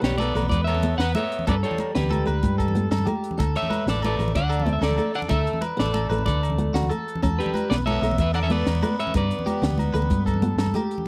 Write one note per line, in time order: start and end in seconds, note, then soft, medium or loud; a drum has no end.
0.00 0.33 B1 medium
0.00 0.18 G3 medium
0.00 0.30 B3 medium
0.00 0.18 G4 medium
0.00 0.18 B4 medium
0.00 snare medium
0.00 closed hi-hat medium
0.00 low conga soft
0.04 0.18 C#5 medium
0.11 low conga medium
0.18 0.50 B3 medium
0.18 0.35 A4 medium
0.18 0.49 B4 medium
0.18 0.48 D5 loud
0.18 closed hi-hat medium
0.18 high conga loud
0.18 low agogo medium
0.35 0.50 B1 medium
0.35 0.63 A3 medium
0.35 0.66 B4 medium
0.35 snare soft
0.35 closed hi-hat medium
0.35 low agogo medium
0.42 low conga medium
0.49 0.96 E2 medium
0.49 0.66 B4 medium
0.49 0.64 D5 medium
0.49 kick medium
0.49 closed hi-hat medium
0.49 high conga medium
0.53 0.67 B3 medium
0.58 low conga soft
0.64 0.97 B3 medium
0.64 0.98 A4 medium
0.64 0.97 C#5 medium
0.64 0.95 E5 loud
0.64 closed hi-hat soft
0.64 low agogo medium
0.75 low conga medium
0.82 1.11 B3 medium
0.82 closed hi-hat medium
0.82 high conga medium
0.98 1.14 E2 medium
0.98 1.14 B3 medium
0.98 1.14 B4 medium
0.98 1.15 B4 medium
0.98 1.13 F#5 loud
0.98 snare medium
0.98 closed hi-hat medium
0.98 low agogo medium
1.15 1.43 A3 medium
1.15 1.45 B3 medium
1.15 1.46 C#5 medium
1.15 1.48 E5 medium
1.15 closed hi-hat medium
1.15 high conga medium
1.15 low agogo medium
1.32 closed hi-hat medium
1.39 low conga medium
1.47 1.62 G2 medium
1.47 1.54 B3 medium
1.47 1.76 C#4 medium
1.47 1.77 A4 medium
1.47 1.54 D5 medium
1.47 kick medium
1.47 closed hi-hat medium
1.47 high conga medium
1.47 low conga soft
1.47 low agogo medium
1.51 1.56 B4 medium
1.63 1.93 G3 medium
1.63 1.94 A4 medium
1.63 1.94 C#5 medium
1.63 closed hi-hat soft
1.71 low conga medium
1.78 closed hi-hat soft
1.78 high conga medium
1.78 low agogo medium
1.95 2.25 D2 medium
1.95 2.87 G3 medium
1.95 2.23 B3 medium
1.95 2.88 G4 medium
1.95 2.87 B4 medium
1.95 snare medium
1.95 closed hi-hat medium
2.03 low conga medium
2.11 2.26 A4 medium
2.11 closed hi-hat soft
2.11 high conga medium
2.11 low agogo medium
2.25 2.42 D2 medium
2.25 2.55 A3 medium
2.25 2.57 B4 medium
2.25 closed hi-hat soft
2.25 low conga soft
2.25 low agogo medium
2.43 2.88 G2 medium
2.43 kick medium
2.43 closed hi-hat medium
2.43 high conga medium
2.58 2.89 A4 medium
2.58 kick medium
2.58 closed hi-hat soft
2.58 low agogo medium
2.68 low conga medium
2.75 3.03 B3 medium
2.75 closed hi-hat medium
2.75 high conga medium
2.91 3.06 G2 medium
2.91 3.06 A4 medium
2.91 snare medium
2.91 closed hi-hat medium
2.91 low conga soft
2.91 low agogo medium
2.98 low conga medium
3.05 3.35 A3 medium
3.05 3.37 G4 medium
3.05 closed hi-hat soft
3.05 high conga medium
3.05 low agogo medium
3.15 low conga soft
3.24 closed hi-hat soft
3.31 low conga medium
3.38 3.54 D2 medium
3.38 3.67 D4 medium
3.38 3.69 A4 medium
3.38 kick medium
3.38 closed hi-hat medium
3.38 high conga loud
3.38 low agogo medium
3.48 low conga soft
3.56 3.86 A3 medium
3.56 3.85 C#5 medium
3.56 3.86 E5 medium
3.56 closed hi-hat medium
3.63 low conga medium
3.70 4.01 B4 medium
3.70 closed hi-hat medium
3.70 high conga medium
3.70 low agogo medium
3.80 low conga soft
3.86 4.17 A1 loud
3.86 4.03 A4 medium
3.86 4.03 D5 medium
3.86 muted steel-string acoustic guitar stroke medium
3.86 snare medium
3.86 closed hi-hat medium
3.86 low conga soft
3.92 4.04 A3 medium
3.96 low conga medium
4.02 4.34 A3 medium
4.02 4.17 A4 medium
4.02 4.34 B4 medium
4.02 4.34 D5 medium
4.02 closed hi-hat soft
4.02 high conga medium
4.02 low agogo medium
4.17 4.34 A1 medium
4.17 4.48 A3 medium
4.17 muted clean electric guitar stroke medium
4.17 snare soft
4.17 closed hi-hat medium
4.17 low agogo medium
4.28 low conga medium
4.35 4.80 D2 medium
4.35 4.74 D4 medium
4.35 4.73 D5 medium
4.35 4.72 F#5 medium
4.35 kick medium
4.35 closed hi-hat medium
4.35 high conga medium
4.44 low conga soft
4.49 4.81 A4 medium
4.49 closed hi-hat soft
4.49 low agogo medium
4.60 low conga medium
4.66 4.95 B3 medium
4.66 closed hi-hat soft
4.66 high conga medium
4.73 4.81 E5 medium
4.77 4.97 D2 medium
4.77 4.83 C#4 medium
4.82 5.14 A3 medium
4.82 4.96 A4 medium
4.82 5.13 A4 medium
4.82 5.14 D5 medium
4.82 snare medium
4.82 closed hi-hat medium
4.82 low agogo medium
4.90 low conga medium
4.97 5.27 A3 medium
4.97 5.28 A4 medium
4.97 closed hi-hat soft
4.97 low agogo medium
5.15 5.34 D4 medium
5.15 5.20 D5 medium
5.15 5.20 F#5 loud
5.15 closed hi-hat soft
5.22 low conga medium
5.29 5.46 D2 loud
5.29 5.64 A3 medium
5.29 5.59 D4 medium
5.29 5.60 A4 medium
5.29 5.62 E5 medium
5.29 kick medium
5.29 closed hi-hat medium
5.29 high conga medium
5.29 low agogo medium
5.37 low conga soft
5.47 closed hi-hat soft
5.53 low conga medium
5.61 5.93 B4 medium
5.61 closed hi-hat soft
5.61 high conga medium
5.61 low agogo medium
5.72 low conga soft
5.77 6.09 A1 medium
5.77 6.24 A3 medium
5.77 6.06 B3 medium
5.77 6.24 A4 medium
5.77 6.24 D5 medium
5.77 snare medium
5.77 closed hi-hat medium
5.77 low conga soft
5.86 low conga medium
5.94 6.09 A4 medium
5.94 closed hi-hat soft
5.94 high conga medium
5.94 low agogo medium
6.09 6.25 A1 medium
6.09 6.39 A3 medium
6.09 6.41 B4 medium
6.09 closed hi-hat medium
6.09 low agogo medium
6.18 low conga medium
6.26 6.72 D2 medium
6.26 6.88 A3 medium
6.26 6.87 A4 medium
6.26 6.86 D5 medium
6.26 kick medium
6.26 closed hi-hat medium
6.26 high conga medium
6.34 low conga soft
6.43 closed hi-hat medium
6.43 low agogo medium
6.50 low conga medium
6.58 6.87 B3 medium
6.58 closed hi-hat medium
6.58 high conga medium
6.74 6.89 D2 loud
6.74 6.90 F#4 medium
6.74 snare medium
6.74 closed hi-hat medium
6.74 low agogo medium
6.83 low conga medium
6.90 7.19 A3 medium
6.90 7.21 A4 medium
6.90 closed hi-hat soft
6.90 low agogo medium
7.08 closed hi-hat soft
7.15 low conga medium
7.22 7.38 E2 loud
7.22 7.51 C#4 medium
7.22 7.53 A4 medium
7.22 kick medium
7.22 closed hi-hat medium
7.22 high conga medium
7.22 low agogo medium
7.31 low conga soft
7.39 7.70 G3 medium
7.39 7.69 G4 medium
7.39 7.70 B4 medium
7.39 closed hi-hat soft
7.46 low conga medium
7.54 7.85 B4 medium
7.54 closed hi-hat soft
7.54 high conga medium
7.54 low agogo medium
7.63 low conga soft
7.70 8.01 B1 medium
7.70 7.99 B3 medium
7.70 7.80 B3 medium
7.70 7.76 B4 medium
7.70 7.75 D5 medium
7.70 snare medium
7.70 closed hi-hat medium
7.70 low conga soft
7.78 low conga medium
7.86 8.02 A4 medium
7.86 8.16 C#5 medium
7.86 8.16 E5 loud
7.86 closed hi-hat soft
7.86 high conga medium
7.86 low agogo medium
7.90 8.18 B3 medium
8.02 8.17 B1 medium
8.02 8.31 A3 medium
8.02 8.33 E5 medium
8.02 snare soft
8.02 closed hi-hat soft
8.02 low agogo medium
8.11 low conga medium
8.18 8.64 E2 loud
8.18 8.34 B3 medium
8.18 8.34 B4 medium
8.18 8.35 E5 medium
8.18 kick medium
8.18 closed hi-hat medium
8.18 high conga medium
8.27 low conga soft
8.34 8.42 D4 medium
8.34 8.65 A4 medium
8.34 8.42 D5 medium
8.34 8.42 F#5 medium
8.34 closed hi-hat soft
8.34 low agogo medium
8.42 8.53 C#4 medium
8.42 8.50 C#5 medium
8.42 8.52 E5 loud
8.42 low conga medium
8.50 8.79 B3 medium
8.50 8.99 B3 loud
8.50 8.95 B4 medium
8.50 9.00 D5 loud
8.50 closed hi-hat medium
8.50 high conga medium
8.67 8.82 E2 medium
8.67 snare medium
8.67 closed hi-hat medium
8.67 low agogo medium
8.75 low conga medium
8.82 9.11 A3 medium
8.82 9.13 B4 medium
8.82 closed hi-hat medium
8.82 high conga loud
8.82 low agogo medium
8.99 9.13 C#4 medium
8.99 9.14 C#5 medium
8.99 9.16 E5 loud
8.99 closed hi-hat medium
9.07 low conga medium
9.14 9.30 G2 loud
9.14 9.43 C#3 medium
9.14 10.70 B3 medium
9.14 10.71 B4 medium
9.14 10.72 D5 medium
9.14 kick medium
9.14 closed hi-hat medium
9.14 high conga medium
9.14 low agogo medium
9.31 closed hi-hat medium
9.31 low conga soft
9.39 low conga medium
9.46 9.77 G4 medium
9.46 closed hi-hat soft
9.46 high conga medium
9.46 low agogo medium
9.62 9.92 D2 medium
9.62 9.90 B3 medium
9.62 snare medium
9.62 closed hi-hat medium
9.70 low conga medium
9.78 closed hi-hat soft
9.78 high conga medium
9.78 low agogo medium
9.94 10.09 D2 medium
9.94 10.22 A3 medium
9.94 10.24 B4 medium
9.94 closed hi-hat medium
9.94 low agogo medium
10.02 low conga medium
10.10 10.55 G2 medium
10.10 kick medium
10.10 closed hi-hat medium
10.10 high conga medium
10.10 low conga soft
10.26 10.57 A4 medium
10.26 kick medium
10.26 closed hi-hat soft
10.26 low agogo medium
10.34 low conga medium
10.42 10.71 B3 medium
10.42 closed hi-hat soft
10.42 high conga medium
10.56 10.72 G2 medium
10.56 10.74 A4 medium
10.56 snare loud
10.56 closed hi-hat medium
10.60 low agogo medium
10.66 low conga medium
10.74 11.03 A3 medium
10.74 11.05 G4 medium
10.74 closed hi-hat soft
10.74 high conga medium
10.74 low agogo medium
10.91 closed hi-hat soft
10.98 low conga medium